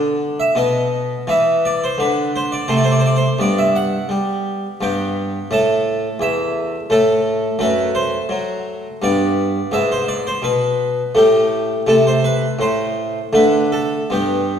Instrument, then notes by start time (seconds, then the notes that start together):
harpsichord
Already playing: D3 B3 D5
0.40 E5
0.55 B2 B3 D#5
1.27 E3 B3 E5
1.65 D5
1.84 C5
1.98 D3 B4
2.36 C5
2.52 D5
2.68 C3 A3 C5
2.77 D5
2.84 C5
2.92 D5
2.99 C5
3.06 D5
3.16 C5
3.38 G2 B3 D5
3.58 E5
3.76 F#5
4.09 G3
4.81 G2 B3 G5
5.51 A2 A3 A5
6.20 E2 E5
6.90 A2 A3 A4
7.59 F#2 A3 B4
7.95 C5
8.29 F#3
9.02 G2 B3 D5
9.71 G#2 B3 E5
9.92 C5
10.08 D5
10.27 C5
10.42 B2 B4
11.15 A2 A3 G4
11.87 C3 A3 A4
12.07 C5
12.24 B4
12.59 A2 C5
13.33 D3 A3 B4
13.72 A4
14.10 G2 B3 G4